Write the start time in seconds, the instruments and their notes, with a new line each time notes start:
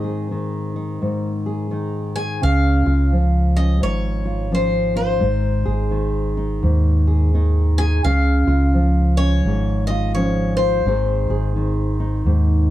Already playing: nylon-string guitar G#2 D#3 C4 D#4, steel-string acoustic guitar D#5
0.04 nylon-string guitar G#4
0.31 nylon-string guitar D#3
0.76 nylon-string guitar D#4
1.02 nylon-string guitar G#2
1.46 nylon-string guitar G#4
1.71 nylon-string guitar D#3 D#4
2.16 nylon-string guitar G#4, steel-string acoustic guitar G#5
2.42 fingered electric bass C#2, nylon-string guitar C#3 C#4, steel-string acoustic guitar F5
2.86 fingered electric bass C#2, nylon-string guitar F4
3.12 nylon-string guitar F3
3.56 nylon-string guitar C#4, steel-string acoustic guitar D#5
3.81 fingered electric bass G#1, nylon-string guitar G#2, steel-string acoustic guitar C#5
4.25 nylon-string guitar F4
4.51 nylon-string guitar F3 C#4, steel-string acoustic guitar C5
4.96 nylon-string guitar F4, steel-string acoustic guitar C5
5.20 fingered electric bass G#1, nylon-string guitar G#2 D#4
5.65 fingered electric bass G#1, nylon-string guitar G#4
5.91 nylon-string guitar D#3
6.37 nylon-string guitar D#4
6.63 fingered electric bass D#2, nylon-string guitar G#2
7.07 nylon-string guitar G#4
7.34 nylon-string guitar D#3 D#4
7.78 nylon-string guitar G#4, steel-string acoustic guitar G#5
8.04 fingered electric bass C#2, nylon-string guitar C#3 C#4, steel-string acoustic guitar F5
8.47 fingered electric bass C#2, nylon-string guitar F4
8.74 nylon-string guitar F3
9.17 nylon-string guitar C#4, steel-string acoustic guitar C#5
9.45 fingered electric bass G#1, nylon-string guitar G#2
9.87 nylon-string guitar F4, steel-string acoustic guitar D#5
10.15 nylon-string guitar F3 C#4, steel-string acoustic guitar C#5
10.57 nylon-string guitar F4, steel-string acoustic guitar C5
10.85 fingered electric bass G#1, nylon-string guitar G#2 D#3 C4 D#4 G#4
11.29 fingered electric bass G#1, nylon-string guitar G#4
11.56 nylon-string guitar D#3
12.00 nylon-string guitar D#4
12.25 fingered electric bass D#2, nylon-string guitar G#2